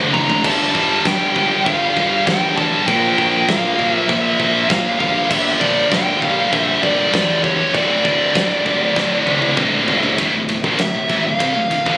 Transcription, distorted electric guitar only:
0.00 0.13 D2 medium
0.00 0.13 A2 medium
0.00 0.13 D3 loud
0.14 0.43 D2 medium
0.14 0.43 A2 medium
0.14 0.43 D3 medium
0.45 0.74 G2 medium
0.45 0.74 D3 medium
0.45 0.75 G3 medium
0.75 1.04 G2 medium
0.75 1.04 D3 medium
0.75 1.04 G3 loud
1.05 1.35 G2 medium
1.05 1.35 D3 loud
1.05 1.35 G3 loud
1.36 1.64 G2 medium
1.36 1.65 D3 medium
1.36 1.65 G3 medium
1.65 1.95 G2 medium
1.65 1.95 D3 loud
1.65 1.96 G3 loud
1.96 2.25 G2 medium
1.96 2.25 D3 medium
1.96 2.26 G3 medium
2.26 2.55 G2 medium
2.26 2.56 D3 medium
2.26 2.56 G3 loud
2.57 2.85 G2 medium
2.57 2.86 D3 loud
2.57 2.86 G3 medium
2.87 3.17 A#2 medium
2.87 3.17 F3 loud
2.87 3.18 A#3 loud
3.18 3.48 A#2 medium
3.18 3.48 F3 loud
3.18 3.49 A#3 loud
3.48 3.78 A#2 medium
3.48 3.77 F3 loud
3.48 3.79 A#3 loud
3.78 4.07 A#2 medium
3.78 4.08 F3 medium
3.78 4.08 A#3 loud
4.08 4.37 A#2 loud
4.08 4.38 F3 loud
4.08 4.38 A#3 loud
4.38 4.67 A#2 medium
4.38 4.67 F3 medium
4.38 4.68 A#3 medium
4.68 4.98 A#2 medium
4.68 4.98 F3 loud
4.68 4.98 A#3 loud
4.98 5.29 G2 medium
4.98 5.29 D3 loud
4.98 5.30 G3 loud
5.30 5.59 G2 medium
5.30 5.59 D3 loud
5.30 5.59 G3 loud
5.60 5.89 G2 medium
5.60 5.90 D3 medium
5.60 5.90 G3 loud
5.90 6.20 G2 loud
5.90 6.21 D3 loud
5.90 6.21 G3 loud
6.21 6.50 G2 loud
6.21 6.51 D3 medium
6.21 6.51 G3 loud
6.51 6.80 G2 medium
6.51 6.81 D3 loud
6.51 6.81 G3 loud
6.81 7.12 G2 medium
6.81 7.12 D3 medium
6.81 7.12 G3 medium
7.13 7.42 G2 medium
7.13 7.43 D3 medium
7.13 7.43 G3 loud
7.43 7.72 G2 loud
7.43 7.72 D3 loud
7.43 7.73 G3 medium
7.74 8.03 D2 medium
7.74 8.03 A2 loud
7.74 8.03 D3 medium
8.04 8.32 D2 medium
8.04 8.33 A2 medium
8.04 8.33 D3 loud
8.34 8.63 D2 loud
8.34 8.64 A2 loud
8.34 8.64 D3 loud
8.64 8.94 D2 medium
8.64 8.95 A2 medium
8.64 8.95 D3 medium
8.95 9.25 D2 medium
8.95 9.25 A2 medium
8.95 9.25 D3 loud
9.26 9.56 D2 medium
9.26 9.56 A2 medium
9.26 9.56 D3 medium
9.57 9.86 D2 medium
9.57 9.87 A2 loud
9.57 9.87 D3 loud
9.88 10.17 D2 medium
9.88 10.17 A2 medium
9.88 10.17 D3 medium
10.18 10.33 D2 medium
10.18 10.33 A2 loud
10.34 10.48 D2 medium
10.34 10.48 A2 medium
10.49 10.64 D2 medium
10.49 10.64 A2 medium
10.64 10.78 A#2 medium
10.64 10.79 F3 medium
10.79 10.93 D2 medium
10.79 10.93 A2 medium
10.94 11.08 D2 medium
10.94 11.07 A2 medium
11.08 11.23 A2 medium
11.08 11.24 E3 medium
11.24 11.38 D2 medium
11.24 11.39 A2 medium
11.39 11.54 C3 medium
11.39 11.55 G3 medium
11.55 11.69 D2 medium
11.55 11.70 A2 medium
11.70 11.85 D2 medium
11.70 11.84 A2 medium
11.85 11.97 A2 medium
11.85 11.97 E3 medium

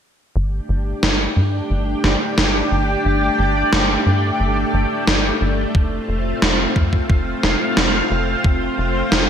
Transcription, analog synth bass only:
0.36 0.60 G1 loud
0.69 0.94 G1 medium
1.03 1.28 G1 medium
1.37 1.61 G2 medium
1.70 1.95 G1 medium
2.04 2.16 G1 loud
2.38 2.62 G1 medium
2.72 2.96 G1 medium
3.05 3.30 G1 medium
3.39 3.64 G1 medium
3.73 3.97 G1 medium
4.06 4.31 G2 medium
4.40 4.65 G1 medium
4.74 4.86 G1 loud
5.07 5.32 G1 medium
5.41 5.66 G1 medium
5.75 5.99 F1 loud
6.09 6.33 F1 medium
6.42 6.67 F1 medium
6.76 7.01 F2 medium
7.10 7.34 F1 medium
7.44 7.56 F1 loud
7.77 8.02 F1 medium
8.11 8.35 F1 medium
8.45 8.69 F1 loud
8.78 9.03 F1 medium
9.12 9.29 F1 medium

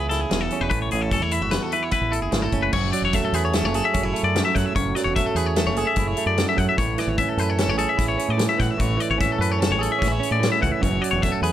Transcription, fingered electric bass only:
0.00 0.24 C#2 loud
0.31 0.48 E1 medium
0.61 0.69 E1 medium
0.71 0.88 A1 loud
0.93 1.09 A1 medium
1.11 1.20 F#1 medium
1.20 1.42 E2 medium
1.40 1.58 F#1 medium
2.01 2.19 A1 medium
2.22 2.30 F#1 medium
2.32 2.51 G#1 medium
2.52 2.71 F#1 medium
2.73 2.90 F#1 loud
3.02 3.19 E1 medium
3.33 3.65 E2 medium
3.63 3.80 F#1 medium
3.95 4.12 F#1 medium
4.23 4.41 F#2 medium
4.56 4.64 F#2 medium
4.76 4.92 F#1 loud
5.05 5.22 E1 medium
5.35 5.68 E2 medium
5.66 5.83 F#1 medium
5.96 6.13 F#1 medium
6.26 6.43 F#2 medium
6.58 6.66 F#2 medium
6.78 6.94 A1 loud
7.07 7.24 G#1 loud
7.37 7.69 F#2 medium
7.68 7.85 A1 medium
7.98 8.15 A1 medium
8.29 8.46 A2 medium
8.60 8.68 A2 medium
8.79 8.96 A1 loud
9.10 9.27 G#1 medium
9.39 9.72 F#2 medium
9.70 9.87 A1 medium
10.02 10.19 A1 loud
10.31 10.48 A2 medium
10.63 10.71 C#2 medium
10.83 10.99 F#1 loud
11.13 11.29 E1 loud
11.42 11.52 E2 medium

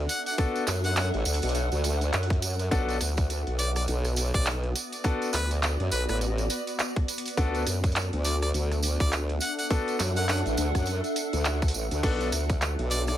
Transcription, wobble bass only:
0.67 1.11 F#2 medium
1.14 1.24 A1 loud
1.26 1.40 D2 loud
1.43 1.69 B1 loud
1.72 2.11 D2 loud
2.13 2.70 F#2 loud
2.71 2.99 B1 loud
3.01 3.44 D2 loud
3.47 3.86 B1 loud
3.88 4.32 B1 loud
4.34 4.73 B1 loud
5.34 5.77 D2 loud
5.80 5.90 F#2 loud
5.92 6.06 B1 medium
6.09 6.48 A1 loud
7.37 7.65 D2 medium
7.67 8.10 F#2 loud
8.13 8.52 D2 loud
8.54 8.97 D2 loud
9.00 9.39 D2 loud
10.00 10.43 F#2 medium
10.46 10.56 A1 loud
10.58 10.72 D2 loud
10.75 11.01 F#2 medium
11.33 11.72 D2 loud
11.74 11.89 A1 loud
11.91 12.01 D2 loud
12.03 12.31 B1 loud
12.32 12.76 D2 loud
12.79 13.18 B1 loud

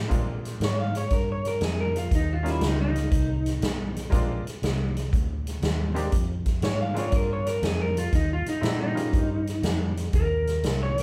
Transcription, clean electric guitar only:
0.64 0.79 C#5 medium
0.80 0.95 F5 medium
0.97 1.12 C#5 medium
1.13 1.28 A#4 medium
1.32 1.46 C#5 medium
1.48 1.62 A#4 medium
1.64 1.79 G#4 medium
1.80 1.95 A#4 medium
1.97 2.12 F4 medium
2.15 2.33 D#4 medium
2.33 2.46 F4 medium
2.50 2.64 E4 medium
2.66 2.80 D#4 medium
2.81 3.77 D#4 medium
6.64 6.79 C#5 medium
6.81 6.96 F5 medium
6.99 7.13 C#5 medium
7.16 7.30 A#4 medium
7.33 7.47 C#5 medium
7.47 7.63 A#4 medium
7.64 7.80 G#4 medium
7.81 7.96 A#4 medium
7.98 8.13 F4 medium
8.15 8.30 D#4 medium
8.33 8.47 F4 loud
8.49 8.64 D#4 medium
8.66 8.79 D#4 medium
8.81 9.77 D#4 medium
10.15 10.79 A#4 loud
10.83 10.98 C#5 medium

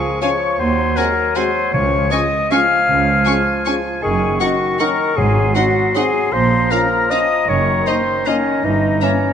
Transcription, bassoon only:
0.00 0.21 F3 medium
0.21 0.60 F3 medium
0.59 1.36 F#3 medium
1.37 1.75 F#3 medium
1.73 2.24 F3 medium
2.51 3.99 F3 medium
4.02 4.40 D#3 medium
4.40 4.79 D#3 medium
4.80 5.17 D#3 medium
5.17 5.54 F#3 medium
5.55 5.94 F#3 medium
5.94 6.32 F#3 medium
6.33 6.70 F3 medium
6.71 7.50 F3 medium
7.49 8.26 D#3 medium
8.27 8.64 D#3 medium
8.64 9.00 E3 medium
9.03 9.33 E3 medium

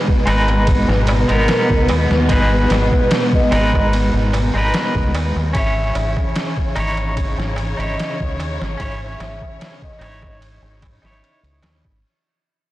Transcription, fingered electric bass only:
0.27 0.85 G#1 medium
0.88 1.24 G#1 loud
1.30 1.47 G#1 medium
1.70 1.87 C#2 medium
1.90 2.08 D#2 medium
2.11 2.28 D#2 medium
2.30 2.66 G#1 loud
2.70 2.89 G#1 medium
3.52 4.10 G#1 medium
4.14 4.49 G#1 loud
4.54 4.71 G#1 medium
4.95 5.12 C#2 loud
5.14 5.33 D#2 medium
5.36 5.53 D#2 medium
5.55 5.91 G#1 loud
5.95 6.14 G#1 medium
6.76 7.34 G#1 medium
7.38 7.73 G#1 loud
7.79 7.95 G#1 medium
8.21 8.37 C#2 loud
8.39 8.57 D#2 medium
8.61 8.77 G#1 medium
8.80 9.15 G#1 loud
9.20 9.38 G#1 loud
10.00 10.58 G#1 medium
10.62 10.98 G#1 loud
11.03 11.20 G#1 medium
11.43 11.60 C#2 medium
11.63 11.81 D#2 loud
11.85 12.01 G#1 medium

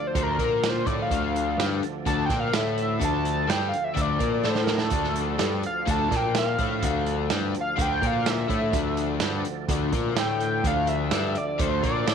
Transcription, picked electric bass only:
0.15 0.37 D2 medium
0.38 0.83 A#2 loud
0.87 1.09 A2 medium
1.10 1.55 D2 medium
1.57 1.80 G2 medium
2.06 2.28 D2 loud
2.30 2.52 A#2 medium
2.54 2.98 A2 medium
3.01 3.45 D2 medium
3.48 3.71 G2 medium
3.97 4.19 D2 medium
4.20 4.43 A#2 medium
4.45 4.89 A2 medium
4.91 5.36 D2 medium
5.40 5.62 G2 medium
5.87 6.10 D2 medium
6.11 6.56 A#2 medium
6.58 6.81 A2 medium
6.83 7.27 D2 loud
7.31 7.53 G2 medium
7.78 8.00 D2 medium
8.02 8.47 A#2 medium
8.50 8.72 A2 medium
8.73 9.18 D2 loud
9.20 9.43 G2 medium
9.68 9.91 D2 loud
9.93 10.15 A#2 medium
10.15 10.61 A2 medium
10.64 11.09 D2 medium
11.12 11.34 G2 medium
11.59 11.82 D2 medium
11.83 12.06 A#2 loud
12.08 12.14 A2 medium

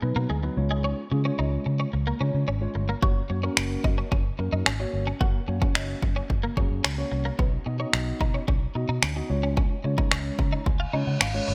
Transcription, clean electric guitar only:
0.02 muted clean electric guitar stroke soft
0.16 0.27 A#3 medium
0.30 0.41 G#3 medium
0.43 muted clean electric guitar stroke soft
0.71 0.82 G#3 medium
0.84 0.95 C#4 medium
1.12 muted clean electric guitar stroke soft
1.25 1.36 C#4 medium
1.39 1.50 D#4 medium
1.66 muted clean electric guitar stroke soft
1.80 1.91 C#4 medium
1.93 muted clean electric guitar stroke soft
2.07 2.18 A#3 medium
2.21 2.32 C#4 medium
2.48 2.59 C#4 medium
2.75 muted clean electric guitar stroke soft
2.89 3.00 A#3 medium
3.03 3.13 F#4 medium
3.30 muted clean electric guitar stroke soft
3.43 3.54 C#4 medium
3.57 muted clean electric guitar stroke soft
3.84 3.95 D#4 medium
3.98 4.09 C#4 medium
4.12 4.23 C#4 medium
4.39 muted clean electric guitar stroke soft
4.53 4.63 D#4 medium
4.66 4.77 C#4 medium
4.80 muted clean electric guitar stroke soft
5.07 5.18 C#4 medium
5.21 5.32 F#4 medium
5.48 muted clean electric guitar stroke soft
5.62 5.73 C#4 medium
5.75 5.86 D#4 medium
6.03 muted clean electric guitar stroke soft
6.16 6.27 C#4 medium
6.30 muted clean electric guitar stroke soft
6.44 6.54 A#3 medium
6.57 6.68 C#4 medium
6.84 6.95 C#4 medium
7.12 muted clean electric guitar stroke soft
7.25 7.36 A#3 medium
7.39 7.50 B3 medium
7.66 muted clean electric guitar stroke soft
7.80 7.91 C#4 medium
7.93 muted clean electric guitar stroke soft
8.21 8.32 D#4 medium
8.34 8.45 C#4 medium
8.48 8.59 C#4 medium
8.75 muted clean electric guitar stroke soft
8.89 9.00 D#4 medium
9.03 9.13 C#4 medium
9.16 muted clean electric guitar stroke soft
9.43 9.54 C#4 medium
9.57 9.68 C#4 medium
9.84 muted clean electric guitar stroke soft
9.98 10.09 D#4 medium
10.12 10.23 C#4 medium
10.39 muted clean electric guitar stroke soft
10.53 10.63 D#4 medium
10.66 muted clean electric guitar stroke soft
10.80 10.91 F4 medium
10.93 11.04 D#4 medium
11.21 11.32 C#4 medium
11.48 muted clean electric guitar stroke soft

